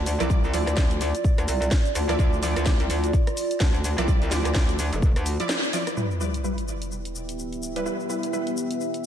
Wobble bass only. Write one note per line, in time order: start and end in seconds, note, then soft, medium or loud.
0.00 0.18 D2 medium
0.20 0.52 C2 loud
0.54 0.76 D2 loud
1.38 1.47 D2 medium
1.48 1.70 C2 medium
1.95 2.17 D2 medium
2.19 2.54 D2 medium
2.56 2.78 D2 medium
2.80 2.88 C2 medium
2.90 3.12 D2 loud
3.61 3.96 D2 loud
3.98 4.30 C2 loud
4.31 4.54 D2 loud
4.55 4.90 D2 medium
4.93 5.14 F1 loud
5.16 5.38 D2 medium